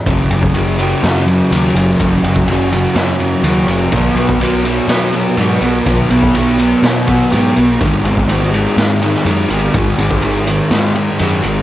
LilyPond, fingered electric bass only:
\new Staff \with { instrumentName = "Fingered electric bass" } { \clef bass \time 4/4 \key fis \mixolydian \tempo 4 = 124 fis,,8 fis,,8 fis,,4 fis,4 dis,8 fis,,8 | fis,,8 fis,,8 fis,,4 fis,4 dis,8 fis,,8 | b,,8 b,,8 b,,4 b,4 gis,8 b,,8 | b,,8 b,,8 b,,4 b,4 gis,8 b,,8 |
gis,,8 gis,,8 gis,,4 gis,4 fis,8 gis,,8 | gis,,8 gis,,8 gis,,4 gis,4 fis,8 gis,,8 | }